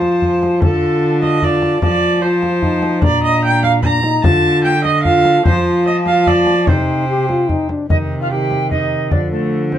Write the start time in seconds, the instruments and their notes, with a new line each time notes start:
Already playing: cello F3, trombone F4, viola C5, recorder A5
0.02 frame drum
0.22 frame drum
0.43 frame drum
0.62 cello D3, trombone F4, viola A4, recorder A5, frame drum
1.22 viola D#5, frame drum
1.42 trombone F4, viola D5, recorder A5, frame drum
1.62 frame drum
1.81 cello F3, trombone F4, viola D5, recorder A5, frame drum
2.22 trombone F4, viola C5, recorder A5
2.43 frame drum
2.62 trombone D#4, frame drum
2.82 frame drum
3.02 cello A#2, trombone D4, viola D5, recorder A#5, frame drum
3.24 viola D#5
3.45 viola G5
3.63 viola F5, frame drum
3.83 trombone D4, viola A#5, recorder A#5, frame drum
4.03 trombone D#4, frame drum
4.24 cello D3, trombone F4, viola A5, recorder A5, frame drum
4.64 viola G5
4.85 viola D#5, frame drum
5.04 trombone F4, viola F5, recorder A5, frame drum
5.25 frame drum
5.45 cello F3, trombone F4, viola C5, recorder A5, frame drum
5.87 viola D#5
6.06 viola F5, frame drum
6.27 viola D5, frame drum
6.47 frame drum
6.67 cello C3, trombone D#4, viola C5, recorder G5, frame drum
7.09 trombone G4
7.29 trombone F4, frame drum
7.49 trombone D#4, frame drum
7.69 trombone D4, frame drum
7.89 cello C3, trombone D#3, viola D#4, recorder D#5, frame drum
8.21 viola F4, recorder F5
8.30 trombone D#3, viola G4, recorder G5
8.51 frame drum
8.70 trombone D#3, viola D#4, recorder D#5, frame drum
9.10 cello D3, trombone F3, viola D4, recorder D5, frame drum
9.31 viola A3, recorder A4
9.72 viola C4, recorder C5, frame drum